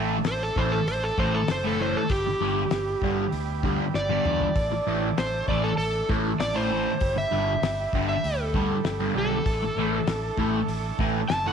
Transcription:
Already playing: fingered electric bass A1, distorted electric guitar A2 E3 A3, transistor combo organ E3 A3 D4 E4 A4
0.24 fingered electric bass A1, electric slide guitar C5, snare, open hi-hat
0.43 electric slide guitar A4
0.56 fingered electric bass A1, distorted electric guitar A2 E3 A3, electric slide guitar C5, kick
0.72 electric slide guitar A4
0.86 fingered electric bass A1, electric slide guitar C5, open hi-hat
1.04 electric slide guitar A4
1.18 fingered electric bass A1, distorted electric guitar A2 E3 A3, electric slide guitar C5, kick
1.34 electric slide guitar A4
1.48 fingered electric bass F#1, electric slide guitar C5, snare, open hi-hat
1.64 distorted electric guitar A2 E3 A3, electric slide guitar A4
1.80 distorted electric guitar A2 E3 A3, electric slide guitar C5
1.97 electric slide guitar A4
2.09 fingered electric bass G1, transistor combo organ G3 B3 G4, electric slide guitar G4, kick, open hi-hat
2.26 muted distorted electric guitar stroke
2.40 fingered electric bass G1, distorted electric guitar G2 D3 G3
2.70 fingered electric bass G1, snare, open hi-hat
3.02 fingered electric bass G1, distorted electric guitar G2 D3 G3, kick
3.32 fingered electric bass D2, open hi-hat
3.63 distorted electric guitar G2 D3 G3, kick
3.94 fingered electric bass G1, electric slide guitar D5, snare
4.09 distorted electric guitar G2 D3 G3, high tom
4.25 fingered electric bass E2, distorted electric guitar G2 D3 G3, mid tom
4.41 floor tom
4.55 fingered electric bass A1, transistor combo organ E3 A3 E4 A4, kick, open hi-hat
4.71 muted distorted electric guitar stroke
4.87 fingered electric bass A1, distorted electric guitar A2 E3 A3
5.18 fingered electric bass A1, electric slide guitar C5, snare, open hi-hat
5.48 fingered electric bass A1, distorted electric guitar A2 E3 A3, electric slide guitar D5, kick
5.64 electric slide guitar A4
5.78 fingered electric bass A1, electric slide guitar A4, open hi-hat
6.09 fingered electric bass A1, distorted electric guitar A2 E3 A3, kick
6.39 fingered electric bass A1, electric slide guitar D5, snare, open hi-hat
6.55 distorted electric guitar A2 E3 A3, electric slide guitar C5
6.71 distorted electric guitar A2 E3 A3
7.00 fingered electric bass G1, transistor combo organ G3 B3 E4 G4, kick, open hi-hat
7.16 electric slide guitar E5, muted distorted electric guitar stroke
7.32 fingered electric bass G1, distorted electric guitar G2 D3 G3
7.62 fingered electric bass G1, snare, open hi-hat
7.93 fingered electric bass G1, distorted electric guitar G2 D3 G3, kick
8.09 electric slide guitar E5
8.24 fingered electric bass D2, open hi-hat
8.41 electric slide guitar A4
8.54 distorted electric guitar G2 D3 G3, kick
8.85 fingered electric bass G1, snare, open hi-hat
9.00 distorted electric guitar G2 D3 G3
9.15 fingered electric bass B1, distorted electric guitar G2 D3 G3, electric slide guitar A4
9.46 fingered electric bass A1, transistor combo organ E3 A3 A4, kick, open hi-hat
9.62 muted distorted electric guitar stroke
9.76 fingered electric bass A1, distorted electric guitar A2 E3 A3
10.06 fingered electric bass A1, snare, open hi-hat
10.37 fingered electric bass A1, distorted electric guitar A2 E3 A3, kick
10.68 fingered electric bass A1, open hi-hat
10.99 fingered electric bass A1, distorted electric guitar A2 E3 A3, kick
11.29 fingered electric bass F#1, electric slide guitar A5, snare, open hi-hat
11.46 distorted electric guitar A2 E3 A3, electric slide guitar F#5

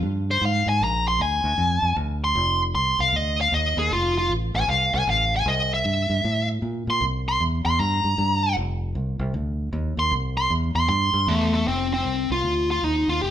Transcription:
0.03 fingered electric bass G2
0.31 lead electric guitar C5
0.42 fingered electric bass G#2, lead electric guitar F5
0.67 fingered electric bass G#2, lead electric guitar G#5
0.81 fingered electric bass A#1, lead electric guitar A#5
1.08 lead electric guitar C6
1.19 fingered electric bass D2, lead electric guitar G#5
1.44 fingered electric bass D2
1.58 fingered electric bass F2
1.82 fingered electric bass F2
1.96 fingered electric bass D2
2.24 lead electric guitar C6
2.35 fingered electric bass F1
2.75 fingered electric bass C2, lead electric guitar C6
2.99 fingered electric bass C2, lead electric guitar F5
3.13 fingered electric bass D2, lead electric guitar D#5
3.41 lead electric guitar F5
3.52 fingered electric bass D#2, lead electric guitar D#5
3.77 fingered electric bass D#2, lead electric guitar G#4
3.91 fingered electric bass F1, lead electric guitar F4
4.18 lead electric guitar F4
4.30 fingered electric bass A1
4.54 fingered electric bass A1, lead electric guitar G#5
4.68 fingered electric bass C2, lead electric guitar F5
4.94 fingered electric bass C2, lead electric guitar G#5
5.07 fingered electric bass A1, lead electric guitar F5
5.36 lead electric guitar G#5
5.46 fingered electric bass C2, lead electric guitar D#5
5.74 lead electric guitar E5
5.85 fingered electric bass G2
6.10 fingered electric bass G2
6.24 fingered electric bass A2
6.62 fingered electric bass A#2
6.87 fingered electric bass A#2, lead electric guitar C6
7.01 fingered electric bass C2
7.29 lead electric guitar C6
7.40 fingered electric bass E2
7.65 fingered electric bass E2, lead electric guitar C6
7.80 fingered electric bass G2, lead electric guitar A#5
8.04 fingered electric bass G2
8.18 fingered electric bass G2
8.56 fingered electric bass F1
8.95 fingered electric bass C2
9.19 fingered electric bass C2
9.34 fingered electric bass D2
9.73 fingered electric bass D#2
9.97 fingered electric bass D#2, lead electric guitar C6
10.11 fingered electric bass C2
10.37 lead electric guitar C6
10.50 fingered electric bass E2
10.75 fingered electric bass E2, lead electric guitar C6
10.88 fingered electric bass G2, lead electric guitar C6
11.14 fingered electric bass G2
11.27 fingered electric bass E2, lead electric guitar A3
11.54 lead electric guitar A3
11.67 fingered electric bass F1, lead electric guitar C4
11.94 lead electric guitar C4
12.05 fingered electric bass C2
12.30 fingered electric bass C2, lead electric guitar F4
12.43 fingered electric bass D2
12.71 lead electric guitar F4
12.83 fingered electric bass D#2, lead electric guitar D#4
13.08 fingered electric bass D#2, lead electric guitar F4
13.22 fingered electric bass F1, lead electric guitar G4

